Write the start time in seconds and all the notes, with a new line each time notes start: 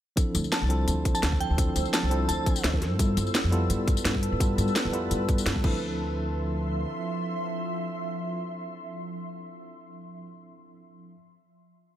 0.16 F3 C4 D4 E4 A4 C5 E6, kick, closed hi-hat, tambourine
0.35 D2, closed hi-hat, tambourine
0.44 tambourine
0.52 A5, snare, closed hi-hat, tambourine
0.62 C2
0.69 F3 C4 D4 E4 A4, closed hi-hat
0.88 D2, closed hi-hat, tambourine
1.05 kick, closed hi-hat, tambourine
1.15 A5, tambourine
1.23 D2, snare, closed hi-hat, tambourine
1.32 kick
1.40 G5, closed hi-hat
1.50 D2
1.57 F3 C4 D4 E4 A4, kick, closed hi-hat, tambourine
1.76 D2, closed hi-hat, tambourine
1.85 tambourine
1.94 A5, snare, closed hi-hat, tambourine
2.03 C2
2.10 F3 C4 D4 E4 A4, closed hi-hat
2.29 D2 A5, closed hi-hat, tambourine
2.46 kick, closed hi-hat, tambourine
2.56 tambourine
2.64 D2, snare, closed hi-hat, tambourine
2.74 kick
2.82 snare, closed hi-hat
2.91 G2
2.98 G3 B3 E4 F4 A4 B4 A5, kick, closed hi-hat, tambourine
3.17 G2, closed hi-hat, tambourine
3.27 tambourine
3.35 snare, closed hi-hat, tambourine
3.44 F2
3.51 G3 B3 E4 F4 A4, closed hi-hat
3.70 G2, closed hi-hat, tambourine
3.88 kick, closed hi-hat, tambourine
3.97 tambourine
4.05 G2, snare, closed hi-hat, tambourine
4.15 kick
4.23 closed hi-hat
4.32 G2
4.39 G3 B3 E4 F4 A4, kick, closed hi-hat, tambourine
4.58 G2, closed hi-hat, tambourine
4.68 tambourine
4.76 snare, closed hi-hat, tambourine
4.85 F2
4.92 G3 B3 E4 F4 A4, closed hi-hat
5.11 G2, closed hi-hat, tambourine
5.29 kick, closed hi-hat, tambourine
5.38 tambourine
5.46 G2, snare, closed hi-hat, tambourine
5.56 kick
5.62 D2 F3 C4 D4 E4 A4 E5 C6, kick, crash